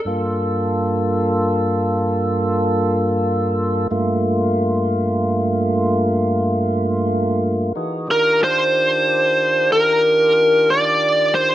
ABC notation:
X:1
M:12/8
L:1/8
Q:3/8=62
K:Gm
V:1 name="Lead electric guitar"
z12 | z12 | z B c4 B3 d2 c |]
V:2 name="Tonewheel organ"
[G,,B,FA]12 | [G,,A,B,F]12 | [=E,_E^F_A] [_E,D=FG]8- [E,DFG]3 |]